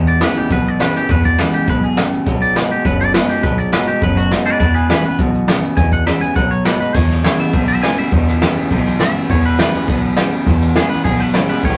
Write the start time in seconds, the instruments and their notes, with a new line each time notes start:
Already playing: clean electric guitar E2 B2, upright bass E2, steel-string acoustic guitar E2
0.06 clean electric guitar D5, closed hi-hat
0.21 clean electric guitar E2 C#3 B4, steel-string acoustic guitar E3 G#3 B3 E4, snare, closed hi-hat
0.36 clean electric guitar G4, muted upright bass stroke, closed hi-hat
0.50 upright bass B1, clean electric guitar E2 B2 B4, steel-string acoustic guitar B2, kick, closed hi-hat
0.65 clean electric guitar D5, closed hi-hat
0.80 clean electric guitar E2 C#3 B4, steel-string acoustic guitar E3 G#3 B3 E4, snare, closed hi-hat
0.94 steel-string acoustic guitar B3 E4, clean electric guitar G4, muted upright bass stroke, snare, closed hi-hat
1.09 upright bass E2, clean electric guitar E2 B2 B4, steel-string acoustic guitar E2, kick, closed hi-hat
1.24 clean electric guitar D5, kick, closed hi-hat
1.38 clean electric guitar E2 C#3 B4, steel-string acoustic guitar E3 G#3 B3 E4, snare, closed hi-hat
1.53 clean electric guitar G4, muted upright bass stroke, closed hi-hat
1.67 upright bass B1, clean electric guitar E2 B2 B4, steel-string acoustic guitar G#2, kick, closed hi-hat
1.83 clean electric guitar G#4, closed hi-hat
1.97 clean electric guitar E2 C#3, steel-string acoustic guitar A2, snare, closed hi-hat
2.12 muted upright bass stroke, closed hi-hat
2.26 upright bass B1, clean electric guitar B2 F#3, steel-string acoustic guitar B2, kick, closed hi-hat
2.42 clean electric guitar D5, closed hi-hat
2.56 clean electric guitar B2 G#3 B4, steel-string acoustic guitar F#3 B3 D#4 F#4, snare, closed hi-hat
2.70 steel-string acoustic guitar D#4 F#4, clean electric guitar G4, muted upright bass stroke, closed hi-hat
2.85 upright bass F#1, steel-string acoustic guitar F#2, clean electric guitar B2 F#3 B4, kick, closed hi-hat
3.00 clean electric guitar D5, closed hi-hat
3.14 clean electric guitar B2 G#3 B4, steel-string acoustic guitar F#3 B3 D#4 F#4, snare, closed hi-hat
3.29 steel-string acoustic guitar D#4 F#4, clean electric guitar G4, muted upright bass stroke, snare, closed hi-hat
3.43 upright bass B1, clean electric guitar B2 F#3 B4, steel-string acoustic guitar B2, kick, closed hi-hat
3.58 clean electric guitar D5, closed hi-hat
3.72 clean electric guitar B2 G#3 B4, steel-string acoustic guitar F#3 B3 D#4 F#4, snare, closed hi-hat
3.87 steel-string acoustic guitar D#4 F#4, clean electric guitar G4, muted upright bass stroke, closed hi-hat
4.02 upright bass F#1, steel-string acoustic guitar F#2, clean electric guitar B2 F#3 B4, kick, closed hi-hat
4.17 clean electric guitar F#4, closed hi-hat
4.31 clean electric guitar B2 G#3, steel-string acoustic guitar F#3 B3 D#4 F#4, snare, closed hi-hat
4.45 steel-string acoustic guitar D#4 F#4, clean electric guitar B4 D5, muted upright bass stroke, closed hi-hat
4.59 clean electric guitar E2 B2 B4 D5, upright bass E2, steel-string acoustic guitar E2, kick, closed hi-hat
4.74 clean electric guitar G#4 B4, closed hi-hat
4.89 clean electric guitar E2 C#3 G#4 B4, steel-string acoustic guitar E3 G#3 B3 E4, snare, closed hi-hat
5.04 steel-string acoustic guitar B3 E4, clean electric guitar B4, muted upright bass stroke, closed hi-hat
5.19 upright bass B1, clean electric guitar E2 B2, steel-string acoustic guitar B2, kick, closed hi-hat
5.34 closed hi-hat
5.47 clean electric guitar E2 C#3, steel-string acoustic guitar E3 G#3 B3 E4, snare, closed hi-hat
5.62 steel-string acoustic guitar B3 E4, muted upright bass stroke, closed hi-hat
5.77 upright bass E2, steel-string acoustic guitar E2, clean electric guitar E2 B2 G#5, kick, closed hi-hat
5.92 clean electric guitar F#5, kick, closed hi-hat
6.07 clean electric guitar E2 C#3 E5, steel-string acoustic guitar E3 G#3 B3 E4, snare, closed hi-hat
6.21 steel-string acoustic guitar B3 E4, clean electric guitar G#5, muted upright bass stroke, closed hi-hat
6.36 upright bass B1, steel-string acoustic guitar B2, clean electric guitar B2 F#3 F#5, kick, closed hi-hat
6.51 clean electric guitar C#5, closed hi-hat
6.64 clean electric guitar B2 G#3 B4, steel-string acoustic guitar F#3 B3 D#4 F#4, snare, closed hi-hat
6.80 steel-string acoustic guitar D#4 F#4, clean electric guitar B4, muted upright bass stroke, closed hi-hat
6.94 upright bass E2, steel-string acoustic guitar E2, clean electric guitar E2 B2 C#5, kick, snare, crash
7.10 snare, ride
7.24 clean electric guitar E2 C#3 C#5, steel-string acoustic guitar E3 G#3 B3 E4, snare, ride
7.39 clean electric guitar E5, muted upright bass stroke, snare, ride
7.53 upright bass B1, clean electric guitar E2 B2, steel-string acoustic guitar B2, kick, ride
7.68 clean electric guitar E5, ride
7.82 clean electric guitar E2 C#3 G#5, steel-string acoustic guitar E3 G#3 B3 E4, snare, ride
7.97 steel-string acoustic guitar B3 E4, clean electric guitar E5, muted upright bass stroke, ride
8.11 steel-string acoustic guitar E2, upright bass E2, clean electric guitar E2 B2, kick, ride
8.28 snare, ride
8.41 clean electric guitar E2 C#3, steel-string acoustic guitar E3 G#3 B3 E4, snare, ride
8.56 steel-string acoustic guitar B3 E4, muted upright bass stroke, ride
8.70 upright bass B1, clean electric guitar E2 B2, steel-string acoustic guitar B2, kick, ride
8.86 snare, ride
9.00 clean electric guitar E2 C#3 E5, steel-string acoustic guitar E3 G#3 B3 E4, snare, ride
9.15 steel-string acoustic guitar B3 E4, muted upright bass stroke, ride
9.29 upright bass E2, clean electric guitar E2 B2 C#5, steel-string acoustic guitar E2, kick, ride
9.44 clean electric guitar B4, ride
9.59 clean electric guitar E2 C#3 B4, steel-string acoustic guitar E3 G#3 B3 E4, snare, ride
9.73 steel-string acoustic guitar B3 E4, muted upright bass stroke, snare, ride
9.88 upright bass B1, clean electric guitar E2 B2, steel-string acoustic guitar B2, kick, ride
10.03 ride
10.16 clean electric guitar E2 C#3, steel-string acoustic guitar E3 G#3 B3 E4, snare, ride
10.32 steel-string acoustic guitar B3 E4, muted upright bass stroke, ride
10.46 upright bass E2, clean electric guitar E2 B2, steel-string acoustic guitar E2, kick, snare, ride
10.62 snare, ride
10.76 clean electric guitar E2 C#3 G#4, steel-string acoustic guitar E3 G#3 B3 E4, snare, ride
10.90 steel-string acoustic guitar B3 E4, clean electric guitar B4, muted upright bass stroke, ride
11.04 upright bass B1, clean electric guitar E2 B2 G#4, steel-string acoustic guitar B2, kick, ride
11.19 clean electric guitar B4, ride
11.34 clean electric guitar E2 C#3 C#5, steel-string acoustic guitar E3 G#3 B3 E4, snare, ride
11.49 clean electric guitar B4, muted upright bass stroke, ride
11.63 upright bass A1, clean electric guitar A2 E3 C#5, steel-string acoustic guitar A2, kick, ride